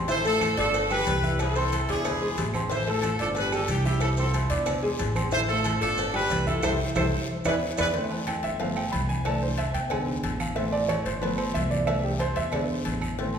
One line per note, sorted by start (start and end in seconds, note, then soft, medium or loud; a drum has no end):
0.00 0.52 A1 loud
0.08 0.22 E3 medium
0.08 0.22 E4 medium
0.08 0.25 A4 medium
0.08 0.25 C5 loud
0.08 0.22 E5 medium
0.08 cowbell loud
0.08 high conga soft
0.08 long guiro medium
0.08 maracas medium
0.24 0.52 A3 medium
0.24 0.57 F4 medium
0.24 0.52 A4 medium
0.24 0.57 A4 loud
0.24 0.52 A5 medium
0.24 high conga soft
0.24 low agogo medium
0.24 maracas medium
0.41 cowbell medium
0.41 high conga loud
0.41 low agogo loud
0.41 short guiro medium
0.41 claves medium
0.41 maracas medium
0.57 1.04 G1 medium
0.57 0.84 D4 medium
0.57 0.89 F4 medium
0.57 0.89 A4 loud
0.57 0.85 D5 medium
0.57 0.85 D6 medium
0.57 cowbell medium
0.57 high conga soft
0.57 short guiro medium
0.57 maracas soft
0.74 cowbell loud
0.74 high conga soft
0.74 low agogo medium
0.74 long guiro medium
0.74 maracas medium
0.90 1.17 G3 medium
0.90 1.18 G4 medium
0.90 1.37 G4 medium
0.90 1.37 B4 loud
0.90 1.18 G5 medium
0.90 high conga soft
0.90 low agogo loud
0.90 claves medium
0.90 maracas medium
1.06 1.83 C2 loud
1.06 cowbell medium
1.06 high conga medium
1.06 low timbale medium
1.06 short guiro medium
1.06 maracas medium
1.23 1.50 E4 medium
1.23 1.50 E5 medium
1.23 1.50 E6 medium
1.23 high conga medium
1.23 short guiro medium
1.23 maracas soft
1.39 1.86 E4 medium
1.39 1.87 A4 loud
1.39 cowbell loud
1.39 high conga soft
1.39 low agogo loud
1.39 long guiro medium
1.39 claves medium
1.39 maracas medium
1.55 1.83 C4 medium
1.55 1.83 C5 loud
1.55 1.83 C6 medium
1.55 high conga soft
1.55 maracas medium
1.72 cowbell medium
1.72 high conga medium
1.72 low agogo medium
1.72 short guiro medium
1.72 maracas medium
1.88 2.34 E2 loud
1.88 2.16 D4 medium
1.88 2.51 E4 medium
1.88 2.51 G#4 loud
1.88 2.16 D5 medium
1.88 2.16 D6 medium
1.88 cowbell medium
1.88 high conga soft
1.88 low agogo medium
1.88 short guiro medium
1.88 maracas soft
2.05 cowbell loud
2.05 high conga soft
2.05 low conga medium
2.05 low agogo loud
2.05 long guiro medium
2.05 claves medium
2.05 maracas medium
2.21 2.48 G#3 medium
2.21 2.48 G#4 medium
2.21 2.49 G#5 medium
2.21 high conga soft
2.38 3.14 A1 loud
2.38 cowbell medium
2.38 high conga medium
2.38 low timbale medium
2.38 low agogo medium
2.38 short guiro medium
2.38 maracas medium
2.54 2.68 C4 medium
2.54 2.68 C5 medium
2.54 2.68 C6 medium
2.54 high conga medium
2.54 low agogo loud
2.54 short guiro medium
2.54 claves medium
2.54 maracas soft
2.70 2.84 E3 medium
2.70 2.84 E4 medium
2.70 2.87 A4 medium
2.70 2.87 C5 loud
2.70 2.85 E5 medium
2.70 cowbell loud
2.70 high conga soft
2.70 long guiro medium
2.70 maracas medium
2.87 3.14 A3 medium
2.87 3.21 F4 medium
2.87 3.14 A4 medium
2.87 3.20 A4 loud
2.87 3.14 A5 medium
2.87 high conga soft
2.87 low agogo medium
3.02 cowbell medium
3.02 high conga medium
3.02 low agogo loud
3.02 short guiro medium
3.02 claves medium
3.02 maracas medium
3.19 3.66 G1 loud
3.19 3.47 D4 medium
3.19 3.29 F4 medium
3.19 3.29 A4 medium
3.19 3.47 D5 medium
3.19 3.47 D6 medium
3.19 cowbell medium
3.19 high conga soft
3.19 short guiro medium
3.19 maracas soft
3.35 3.53 B4 loud
3.35 cowbell loud
3.35 high conga soft
3.35 low agogo medium
3.35 long guiro medium
3.35 maracas medium
3.39 3.53 G4 medium
3.52 3.79 G3 medium
3.52 3.69 F4 medium
3.52 3.79 G4 medium
3.52 3.69 A4 medium
3.52 3.80 G5 medium
3.52 high conga soft
3.52 low agogo loud
3.52 claves medium
3.52 maracas medium
3.68 4.45 C2 loud
3.68 3.85 D4 medium
3.68 3.85 G4 loud
3.68 cowbell medium
3.68 high conga medium
3.68 short guiro medium
3.68 maracas medium
3.85 4.12 E4 medium
3.85 4.01 E4 medium
3.85 4.01 G4 loud
3.85 4.12 E5 medium
3.85 4.13 E6 medium
3.85 high conga medium
3.85 short guiro medium
3.85 maracas soft
4.00 4.09 E4 medium
4.00 4.09 A4 medium
4.00 cowbell loud
4.00 high conga soft
4.00 low agogo loud
4.00 long guiro medium
4.00 claves medium
4.00 maracas medium
4.17 4.45 C4 medium
4.17 4.34 F4 medium
4.17 4.34 A4 medium
4.17 4.45 C5 medium
4.17 4.45 C6 medium
4.17 high conga soft
4.17 maracas medium
4.33 4.68 C4 medium
4.33 5.01 E4 medium
4.33 cowbell medium
4.33 high conga medium
4.33 low agogo medium
4.33 short guiro medium
4.33 maracas medium
4.50 4.96 E2 medium
4.50 4.77 D4 medium
4.50 4.77 D5 medium
4.50 4.78 D6 medium
4.50 cowbell medium
4.50 high conga soft
4.50 low agogo medium
4.50 short guiro medium
4.50 maracas soft
4.66 cowbell loud
4.66 high conga soft
4.66 low conga medium
4.66 low agogo loud
4.66 long guiro medium
4.66 claves medium
4.66 maracas medium
4.83 5.10 G#3 medium
4.83 5.10 G#4 medium
4.83 5.10 G#5 medium
4.83 high conga soft
4.99 5.76 A1 loud
4.99 cowbell medium
4.99 high conga medium
4.99 low agogo medium
4.99 short guiro medium
4.99 maracas medium
5.15 5.29 C4 medium
5.15 5.29 C5 medium
5.15 5.30 C6 medium
5.15 high conga medium
5.15 low agogo loud
5.15 short guiro medium
5.15 claves medium
5.15 maracas soft
5.31 5.46 E3 medium
5.31 5.46 E4 medium
5.31 5.41 A4 medium
5.31 5.41 C5 loud
5.31 5.46 E5 medium
5.31 cowbell loud
5.31 high conga soft
5.31 maracas medium
5.48 5.76 A3 medium
5.48 5.80 F4 medium
5.48 5.79 A4 loud
5.48 5.76 A4 medium
5.48 5.76 A5 medium
5.48 high conga soft
5.48 low agogo medium
5.64 cowbell medium
5.64 high conga medium
5.64 low agogo loud
5.64 short guiro medium
5.64 claves medium
5.64 maracas medium
5.81 6.27 G1 medium
5.81 6.08 D4 medium
5.81 6.12 F4 medium
5.81 6.12 A4 loud
5.81 6.08 D5 medium
5.81 6.09 D6 medium
5.81 cowbell medium
5.81 high conga soft
5.81 short guiro medium
5.81 maracas soft
5.97 cowbell loud
5.97 high conga soft
5.97 low agogo medium
5.97 long guiro medium
5.97 maracas medium
6.14 6.41 G3 medium
6.14 6.41 G4 medium
6.14 6.46 G4 medium
6.14 6.46 B4 loud
6.14 6.41 G5 medium
6.14 high conga soft
6.14 low agogo loud
6.14 claves medium
6.30 6.61 C2 medium
6.30 cowbell medium
6.30 high conga medium
6.30 low timbale medium
6.30 short guiro medium
6.30 maracas medium
6.47 6.60 E4 medium
6.47 6.63 F4 medium
6.47 6.63 A4 medium
6.47 6.61 E5 medium
6.47 6.61 E6 medium
6.47 high conga medium
6.47 short guiro medium
6.47 maracas soft
6.63 6.75 C2 loud
6.63 6.72 G4 medium
6.63 6.74 A4 loud
6.63 6.72 A4 loud
6.63 6.74 C5 medium
6.63 6.72 C5 loud
6.63 6.74 E5 loud
6.63 cowbell loud
6.63 high conga loud
6.63 high timbale loud
6.63 long guiro loud
6.63 claves loud
6.63 maracas medium
6.95 7.08 C2 loud
6.95 7.05 G4 medium
6.95 7.06 A4 loud
6.95 7.05 A4 medium
6.95 7.07 C5 loud
6.95 7.04 C5 medium
6.95 7.06 E5 loud
6.95 cowbell loud
6.95 high conga medium
6.95 high timbale loud
6.95 long guiro loud
6.95 claves loud
6.95 maracas medium
7.45 7.58 E2 loud
7.45 7.54 E4 medium
7.45 7.54 G#4 loud
7.45 7.56 B4 loud
7.45 7.54 B4 medium
7.45 7.56 D5 loud
7.45 7.56 E5 loud
7.45 cowbell loud
7.45 high conga loud
7.45 high timbale loud
7.45 long guiro loud
7.45 claves loud
7.45 maracas loud
7.78 7.91 E2 medium
7.78 7.87 E4 loud
7.78 7.88 G#4 medium
7.78 7.89 B4 loud
7.78 7.88 B4 loud
7.78 7.89 D5 loud
7.78 7.89 E5 medium
7.78 cowbell loud
7.78 high conga medium
7.78 high timbale loud
7.78 long guiro loud
7.78 claves loud
7.78 maracas medium
7.94 8.56 E3 medium
7.94 8.57 A3 soft
7.94 8.57 C4 medium
7.94 cowbell loud
7.94 high conga soft
7.94 long guiro medium
8.11 high conga soft
8.11 low agogo medium
8.27 8.43 G5 medium
8.27 cowbell medium
8.27 high conga medium
8.27 low agogo loud
8.27 short guiro medium
8.27 claves medium
8.43 8.89 G1 medium
8.43 8.60 E5 medium
8.43 cowbell medium
8.43 high conga soft
8.43 short guiro medium
8.60 8.82 F3 soft
8.60 8.82 A3 medium
8.60 8.82 B3 medium
8.60 8.76 F5 medium
8.60 cowbell loud
8.60 high conga soft
8.60 low agogo medium
8.60 long guiro medium
8.76 8.92 G5 medium
8.76 high conga soft
8.76 low agogo loud
8.76 claves medium
8.92 9.69 C2 loud
8.92 9.08 B5 medium
8.92 cowbell medium
8.92 high conga medium
8.92 short guiro medium
9.09 9.25 G#5 medium
9.09 high conga medium
9.09 short guiro medium
9.25 9.47 E3 medium
9.25 9.47 A3 medium
9.25 9.48 D4 medium
9.25 9.42 A5 loud
9.25 cowbell loud
9.25 high conga soft
9.25 low agogo loud
9.25 long guiro medium
9.25 claves medium
9.42 9.58 C5 medium
9.42 high conga soft
9.58 9.74 E5 medium
9.58 cowbell medium
9.58 high conga medium
9.58 low agogo medium
9.58 short guiro medium
9.74 10.20 E2 medium
9.74 9.90 G5 medium
9.74 cowbell medium
9.74 high conga soft
9.74 low agogo medium
9.74 short guiro medium
9.90 10.37 D3 medium
9.90 10.38 G#3 soft
9.90 10.38 B3 medium
9.90 10.37 G#5 medium
9.90 cowbell loud
9.90 high conga soft
9.90 low conga medium
9.90 low agogo loud
9.90 long guiro medium
9.90 claves medium
10.07 high conga soft
10.07 low conga medium
10.23 11.00 A1 medium
10.23 cowbell medium
10.23 high conga medium
10.23 low agogo medium
10.23 short guiro medium
10.40 10.56 F5 medium
10.40 high conga medium
10.40 low agogo loud
10.40 short guiro medium
10.40 claves medium
10.55 11.02 E3 medium
10.55 11.03 A3 soft
10.55 11.03 C4 medium
10.55 10.72 E5 medium
10.55 cowbell loud
10.55 high conga soft
10.55 long guiro medium
10.72 10.88 D5 loud
10.72 high conga soft
10.72 low agogo medium
10.89 11.05 C#5 medium
10.89 cowbell medium
10.89 high conga medium
10.89 low agogo loud
10.89 short guiro medium
10.89 claves medium
11.05 11.51 G1 medium
11.05 11.21 C5 medium
11.05 cowbell medium
11.05 high conga soft
11.05 short guiro medium
11.21 11.84 F3 medium
11.21 11.84 A3 soft
11.21 11.84 B3 medium
11.21 11.38 B4 medium
11.21 cowbell loud
11.21 high conga soft
11.21 low agogo medium
11.21 long guiro medium
11.38 11.54 C5 medium
11.38 high conga soft
11.38 low agogo loud
11.38 claves medium
11.54 12.31 C2 loud
11.54 11.70 E5 medium
11.54 cowbell medium
11.54 high conga medium
11.54 short guiro medium
11.71 11.87 D5 medium
11.71 high conga medium
11.71 short guiro medium
11.86 12.09 E3 soft
11.86 12.09 A3 soft
11.86 12.09 D4 medium
11.86 12.03 E5 medium
11.86 cowbell loud
11.86 high conga soft
11.86 low agogo loud
11.86 long guiro medium
11.86 claves medium
12.03 12.20 G4 medium
12.03 high conga soft
12.19 12.36 C5 medium
12.19 cowbell medium
12.19 high conga medium
12.19 low agogo medium
12.19 short guiro medium
12.36 12.82 E2 medium
12.36 12.53 E5 medium
12.36 cowbell medium
12.36 high conga soft
12.36 low agogo medium
12.36 short guiro medium
12.52 13.00 D3 medium
12.52 13.00 G#3 soft
12.52 13.00 B3 medium
12.52 12.63 D5 medium
12.52 cowbell loud
12.52 high conga soft
12.52 low conga medium
12.52 low agogo loud
12.52 long guiro medium
12.52 claves medium
12.69 high conga soft
12.85 13.39 A1 medium
12.85 cowbell medium
12.85 high conga medium
12.85 low agogo medium
12.85 short guiro medium
13.01 high conga medium
13.01 low agogo medium
13.01 short guiro medium
13.01 claves medium
13.18 13.39 E3 soft
13.18 13.39 A3 soft
13.18 13.39 C4 medium
13.18 cowbell loud
13.18 high conga soft
13.18 long guiro medium
13.34 low agogo medium